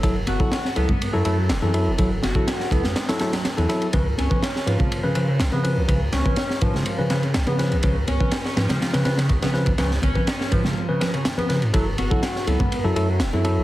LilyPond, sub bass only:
\new Staff \with { instrumentName = "Sub bass" } { \clef bass \time 4/4 \key fis \minor \tempo 4 = 123 fis,,8 fis,,16 r8. cis,16 fis,16 fis,16 fis,16 fis,8 e,,16 fis,8 e,,16 | fis,,8 fis,,16 r8. cis,16 fis,16 r4 r16 e,16 r8 | cis,8 cis,16 r8. gis,16 cis16 cis16 cis16 cis8 b,,16 cis8 b,,16 | cis,8 cis,16 r8. gis,16 cis16 r16 cis16 cis8 b,,16 cis8 b,,16 |
cis,8 cis,16 r8. gis,16 cis16 cis16 cis16 cis8 b,,16 cis8 b,,16 | cis,8 cis,16 r8. gis,16 cis16 r4. cis16 gis,16 | fis,,8 fis,,16 r8. cis,16 fis,16 fis,16 fis,16 fis,8 e,,16 fis,8 e,,16 | }